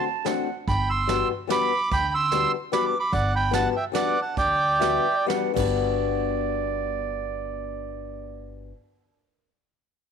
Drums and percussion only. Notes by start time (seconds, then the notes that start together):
0.26 snare, closed hi-hat
0.67 kick, closed hi-hat
1.09 snare, closed hi-hat
1.50 snare, closed hi-hat
1.91 kick, closed hi-hat
2.32 snare, closed hi-hat
2.73 snare, closed hi-hat
3.13 kick, closed hi-hat
3.53 snare, closed hi-hat
3.95 snare, closed hi-hat
4.37 kick, closed hi-hat
4.81 snare, closed hi-hat
5.30 snare, closed hi-hat
5.56 kick, crash